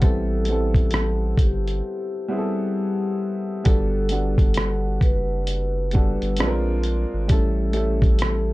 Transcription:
0.01 sub bass A1, upright piano G3 B3 C4 E4 A4, vibraphone A4, kick, closed hi-hat
0.45 upright piano G3 B3, closed hi-hat
0.50 upright piano C4 E4 A4
0.74 kick, closed hi-hat
0.91 cross-stick, closed hi-hat
1.38 sub bass G1, vibraphone G4, kick, closed hi-hat
1.68 closed hi-hat
2.28 upright piano G3 B3 C4 E4 G#4
2.38 upright piano A4
3.64 sub bass G1, upright piano G3 B3 D4 F#4 A4, vibraphone A4, kick, closed hi-hat
4.09 upright piano G3 B3 D4 F#4, closed hi-hat
4.13 upright piano A4
4.38 kick, closed hi-hat
4.54 cross-stick, closed hi-hat
5.01 sub bass F#1, vibraphone B4, kick, closed hi-hat
5.47 closed hi-hat
5.91 upright piano G3 B3 D4, kick, closed hi-hat
5.96 upright piano F#4 A4
6.22 sub bass G1, closed hi-hat
6.37 sub bass A#1, upright piano G#3 C4 D4, cross-stick, closed hi-hat
6.41 upright piano F4 A4
6.48 upright piano A#4
6.83 closed hi-hat
7.14 sub bass G#1
7.28 sub bass A1, upright piano G3 A3 C#4 E4 A4, vibraphone A4, kick, closed hi-hat
7.73 upright piano G3 A3 C#4 E4 A4, closed hi-hat
8.02 kick, closed hi-hat
8.19 cross-stick, closed hi-hat

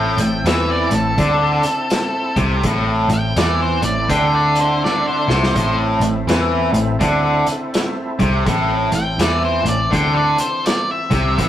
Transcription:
Already playing: picked electric bass A1, distorted electric guitar A2, tonewheel organ C4 E4 A4, lead electric guitar G5
0.17 picked electric bass A1, distorted electric guitar A2, closed hi-hat
0.44 picked electric bass E2, distorted electric guitar E3, lead electric guitar E5, snare, closed hi-hat
0.70 lead electric guitar D5
0.91 picked electric bass A1, distorted electric guitar A2, lead electric guitar A4, closed hi-hat
1.18 picked electric bass D2, distorted electric guitar D3, kick, closed hi-hat
1.63 closed hi-hat
1.90 snare, closed hi-hat
2.36 picked electric bass C2, distorted electric guitar C3, kick, closed hi-hat
2.61 picked electric bass A1, tonewheel organ A3 C4 E4, kick, closed hi-hat
2.65 distorted electric guitar A2
3.09 picked electric bass A1, distorted electric guitar A2, closed hi-hat
3.14 lead electric guitar G5
3.36 picked electric bass E2, distorted electric guitar E3, lead electric guitar D5, snare, closed hi-hat
3.62 lead electric guitar C5
3.82 picked electric bass A1, distorted electric guitar A2, lead electric guitar D5, closed hi-hat
4.09 picked electric bass D2, distorted electric guitar D3, lead electric guitar G5, kick, closed hi-hat
4.35 lead electric guitar D5
4.55 closed hi-hat
4.60 lead electric guitar C5
4.84 lead electric guitar D5, snare
5.08 lead electric guitar C5
5.28 picked electric bass C2, distorted electric guitar C3, snare
5.43 snare
5.55 picked electric bass A1, distorted electric guitar A2, tonewheel organ A3 C4 E4, kick, closed hi-hat
6.00 picked electric bass A1, distorted electric guitar A2, closed hi-hat
6.27 picked electric bass E2, distorted electric guitar E3, snare, closed hi-hat
6.73 picked electric bass A1, distorted electric guitar A2, closed hi-hat
7.00 picked electric bass D2, distorted electric guitar D3, kick, closed hi-hat
7.47 closed hi-hat
7.74 snare, closed hi-hat
8.19 picked electric bass C2, distorted electric guitar C3, kick, closed hi-hat
8.46 picked electric bass A1, distorted electric guitar A2, tonewheel organ E3 A3 C4, kick, closed hi-hat
8.92 picked electric bass A1, distorted electric guitar A2, lead electric guitar G5, closed hi-hat
9.18 picked electric bass E2, distorted electric guitar E3, lead electric guitar D5, snare, closed hi-hat
9.45 lead electric guitar C5
9.64 picked electric bass A1, distorted electric guitar A2, closed hi-hat
9.69 lead electric guitar D5
9.91 picked electric bass D2, distorted electric guitar D3, lead electric guitar G5, kick, closed hi-hat
10.14 lead electric guitar D5
10.38 lead electric guitar C5, closed hi-hat
10.66 lead electric guitar D5, snare, closed hi-hat
10.91 lead electric guitar E5
11.10 picked electric bass C2, distorted electric guitar C3, kick, closed hi-hat
11.38 picked electric bass A1, distorted electric guitar A2, tonewheel organ A3 C4 E4, kick, closed hi-hat

